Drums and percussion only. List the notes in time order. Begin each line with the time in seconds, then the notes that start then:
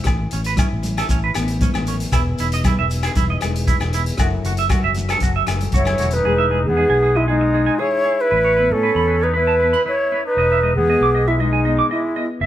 0.04 kick, cross-stick, closed hi-hat, muted conga, low agogo, shekere
0.31 closed hi-hat, shekere
0.44 closed hi-hat
0.56 kick, cross-stick, closed hi-hat, high conga, low agogo, shekere
0.83 closed hi-hat, high conga, shekere
0.97 cross-stick, closed hi-hat, low agogo
1.08 kick, closed hi-hat, muted conga, shekere
1.34 cross-stick, closed hi-hat, muted conga, low agogo, shekere
1.48 closed hi-hat
1.60 kick, closed hi-hat, high conga, low conga, shekere
1.74 cross-stick, low agogo
1.87 closed hi-hat, muted conga, shekere
2.00 closed hi-hat
2.12 kick, cross-stick, closed hi-hat, muted conga, low agogo, shekere
2.38 closed hi-hat, shekere
2.52 closed hi-hat
2.64 kick, cross-stick, closed hi-hat, high conga, low agogo, shekere
2.90 closed hi-hat, shekere
3.03 cross-stick, closed hi-hat, low agogo
3.15 kick, closed hi-hat, muted conga, high conga, shekere
3.41 cross-stick, closed hi-hat, muted conga, low agogo, shekere
3.55 closed hi-hat
3.67 kick, closed hi-hat, high conga, shekere
3.80 cross-stick, low agogo
3.93 closed hi-hat, muted conga, shekere
4.06 closed hi-hat
4.17 kick, cross-stick, closed hi-hat, muted conga, low agogo, shekere
4.44 closed hi-hat, low conga, shekere
4.57 closed hi-hat
4.69 kick, cross-stick, closed hi-hat, high conga, low agogo, shekere
4.94 closed hi-hat, high conga, shekere
5.09 cross-stick, closed hi-hat, low agogo
5.20 kick, closed hi-hat, muted conga, shekere
5.47 cross-stick, closed hi-hat, muted conga, low agogo, shekere
5.60 closed hi-hat, high conga
5.72 kick, closed hi-hat, high conga, shekere
5.85 cross-stick, high conga, low agogo
5.98 closed hi-hat, low conga, shekere
6.11 closed hi-hat, low conga